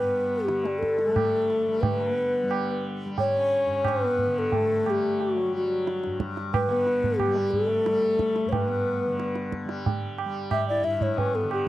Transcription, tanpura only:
0.00 3.66 G2 soft
0.00 0.47 D3 medium
0.00 1.08 G3 medium
0.48 1.82 D3 medium
1.08 1.67 G3 medium
1.67 2.43 G3 medium
1.82 4.26 D3 medium
2.43 3.05 G3 medium
3.05 4.85 G3 medium
3.66 6.06 G2 medium
4.26 6.66 D3 medium
4.85 5.48 G3 soft
5.48 7.27 G3 medium
6.06 8.45 G2 medium
6.66 9.05 D3 medium
7.27 7.87 G3 medium
7.87 9.65 G3 medium
8.45 10.81 G2 medium
9.06 11.42 D3 medium
9.65 10.25 G3 medium
10.25 11.68 G3 medium
10.82 11.68 G2 medium
11.43 11.68 D3 medium

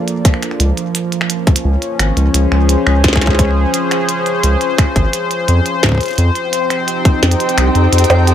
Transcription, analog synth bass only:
0.60 0.72 C#2 loud
1.64 1.77 C#2 medium
1.99 2.11 G#1 medium
2.17 2.29 C#2 loud
2.34 2.46 C#2 medium
2.52 2.76 C#2 medium
2.87 3.65 C#2 medium
4.43 4.56 C#2 medium
4.96 5.08 G#1 loud
5.48 5.60 F2 medium
6.18 6.30 F2 loud
7.23 7.35 F2 medium
7.57 7.70 C2 medium
7.75 7.87 F2 loud
7.92 8.04 F2 medium
8.10 8.34 F2 medium

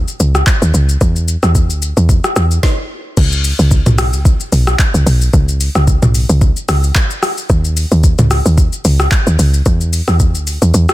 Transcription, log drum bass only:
0.20 0.43 C#2 medium
0.62 0.72 D#2 loud
0.74 0.97 C#2 medium
1.01 1.37 E2 loud
1.43 1.71 E2 loud
1.70 1.93 D2 loud
1.97 2.20 E2 medium
2.36 2.59 E2 medium
3.17 3.53 C#2 loud
3.59 3.82 C#2 loud
3.86 4.15 B1 medium
4.13 4.36 C#2 medium
4.52 4.75 B1 medium
4.94 5.05 C#2 medium
5.06 5.29 B1 loud
5.34 5.69 C#2 loud
5.75 5.98 C#2 loud
6.02 6.25 B1 medium
6.29 6.52 C#2 loud
6.69 6.92 C#2 medium
7.50 7.85 D#2 loud
7.92 8.15 D#2 loud
8.19 8.42 C#2 medium
8.46 8.69 D#2 loud
8.85 9.08 C#2 loud
9.27 9.37 D#2 loud
9.39 9.62 C#2 medium
9.66 10.02 E2 loud
10.08 10.36 E2 loud
10.35 10.58 D2 medium
10.62 10.72 E2 medium
10.74 10.87 E2 loud

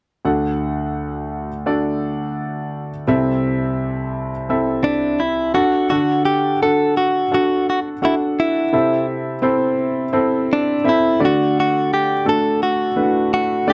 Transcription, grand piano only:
0.25 3.04 D2 medium
0.25 3.04 D3 medium
0.25 1.48 D4 medium
0.25 1.48 F#4 medium
0.25 1.48 A4 medium
0.25 1.48 F#5 medium
1.66 2.89 D4 medium
1.66 2.90 F#4 medium
1.66 2.89 A4 medium
1.66 2.90 D5 medium
3.07 5.51 C2 medium
3.07 5.51 C3 medium
3.07 4.31 C4 medium
3.07 4.31 E4 medium
3.07 4.31 A4 medium
3.07 4.31 E5 medium
4.49 5.55 C4 medium
4.49 5.55 E4 medium
4.49 5.53 A4 medium
4.49 5.56 E5 medium
5.54 5.86 D4 medium
5.54 5.85 F#4 medium
5.54 5.86 A4 medium
5.54 5.86 F#5 medium
5.90 6.93 D3 medium
5.90 6.52 D4 medium
5.90 6.52 F#4 medium
5.90 6.53 A4 medium
5.90 6.53 F#5 medium
6.62 7.23 D4 medium
6.62 7.23 F#4 medium
6.62 7.23 A4 medium
6.62 7.24 F#5 medium
7.31 7.93 D4 medium
7.31 7.93 F#4 medium
7.31 7.93 A4 medium
7.31 7.94 F#5 medium
8.02 8.64 D4 medium
8.02 8.64 F#4 medium
8.02 8.64 A4 medium
8.02 8.64 F#5 medium
8.73 9.75 C3 medium
8.73 9.34 C4 medium
8.73 9.35 E4 medium
8.73 9.35 A4 medium
8.73 9.35 E5 medium
9.42 10.04 C4 medium
9.42 10.05 E4 medium
9.42 10.05 A4 medium
9.42 10.05 C5 medium
10.13 10.75 C4 medium
10.13 10.75 E4 medium
10.13 10.76 A4 medium
10.13 10.75 C5 medium
10.84 11.20 C4 medium
10.84 11.20 E4 medium
10.84 11.20 A4 medium
10.84 11.20 E5 medium
11.20 12.22 D3 medium
11.20 12.12 A3 medium
11.20 12.12 D4 medium
11.20 12.13 F#4 medium
11.20 12.13 D5 medium
12.25 12.88 A3 medium
12.25 12.88 D4 medium
12.25 12.87 F#4 medium
12.25 12.88 A4 medium
12.96 13.58 A3 medium
12.96 13.58 D4 medium
12.96 13.03 E4 soft
12.96 13.58 B4 medium
13.03 13.62 F#4 medium
13.67 13.73 A3 medium
13.67 13.73 D4 medium
13.67 13.73 D5 medium
13.67 13.73 F#5 medium

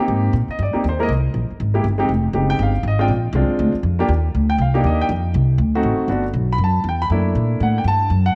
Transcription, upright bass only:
0.08 0.33 G#2 medium
0.33 0.47 A#2 medium
0.48 muted upright bass stroke soft
0.59 0.72 G2 medium
0.75 muted upright bass stroke soft
0.84 1.08 D#2 medium
1.09 1.33 C2 medium
1.34 1.48 A#1 medium
1.50 muted upright bass stroke soft
1.60 1.83 G#1 medium
1.84 2.08 G1 medium
2.09 2.33 F1 medium
2.33 2.58 F#1 medium
2.59 2.83 G1 medium
2.83 3.08 G#1 medium
3.08 3.32 A#1 medium
3.33 3.47 C2 medium
3.49 muted upright bass stroke soft
3.59 3.73 D2 medium
3.74 muted upright bass stroke soft
3.83 4.08 F2 medium
4.09 4.33 D#2 medium
4.35 4.58 D2 medium
4.58 4.83 C2 medium
4.84 5.08 D#2 medium
5.09 5.34 F2 medium
5.34 5.58 C2 medium
5.58 5.83 D2 medium
5.83 5.97 A1 medium
5.98 muted upright bass stroke soft
6.08 6.33 G1 medium
6.34 6.58 B1 medium
6.58 6.83 F#2 medium
6.84 7.09 E2 medium
7.10 7.34 F#2 medium
7.35 7.59 A#2 medium
7.60 7.84 A2 medium
7.84 8.09 G2 medium
8.10 8.34 F#2 medium

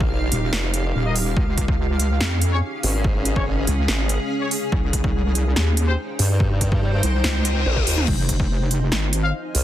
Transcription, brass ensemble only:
1.05 1.13 D#4 medium
1.05 1.13 A#4 medium
1.05 1.13 D#5 medium
2.52 2.60 C#4 medium
2.52 2.60 G#4 medium
2.52 2.60 C#5 loud
3.36 3.43 C#4 medium
3.36 3.43 G#4 medium
3.36 3.43 C#5 medium
4.41 4.48 C#4 medium
4.41 4.48 G#4 medium
4.41 4.48 C#5 medium
5.88 5.95 C4 loud
5.88 5.95 G4 medium
5.88 5.95 C5 loud
9.24 9.31 F4 medium
9.24 9.31 C5 medium
9.24 9.31 F5 loud

